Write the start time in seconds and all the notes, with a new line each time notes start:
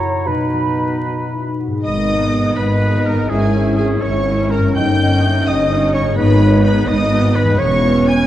Already playing: F#2 F#3 E4 F#4 C#5 A#5
0.00 E4
0.26 B2 D#4 B4 B5
0.53 F#3
0.80 B4
1.06 D#4 F#4
1.32 D#4 E4
1.59 B3 F#4
1.67 G#2
1.71 G#3
1.76 D#4
1.80 B4 D#5
1.85 G#1 G#2 B3 D#4 D#5 D#6
2.09 B3 D#4
2.56 G#1 G#2 B4 D#5 B5
2.81 B3 D#4
3.05 A#4 A#5
3.12 G#2
3.16 A#3
3.20 E4
3.25 C#5 E5 G#5
3.29 G#1 G#2 C#4 E4 G#4
3.54 C#4 E4
3.77 G#4 G#5
4.00 G#1 G#2 C#5 C#6
4.26 C#4 E4
4.50 A#4 A#5
4.57 G2
4.62 A#3
4.66 D#4
4.70 C#5 G5
4.75 G1 G2 D#4 D#5 G5 G6
4.99 C#4 D#4 D#5
5.24 E5
5.46 G1 G2 D#5 D#6
5.71 C#4 D#4
5.93 C#5 C#6
6.00 G#2
6.04 B3
6.09 D#4
6.13 B4 B5
6.17 G#1 G#2 B3 D#4 B4 C#5
6.42 B3 D#4
6.64 B4 B5
6.87 G#1 G#2 B4 D#5 D#6
7.12 B3 D#4
7.34 B4 B5
7.42 E2
7.47 B3
7.51 C#4
7.56 E1 C#5 C#6
7.60 E2 C#4 C#5
7.85 B3 C#4
8.07 G#5 G#6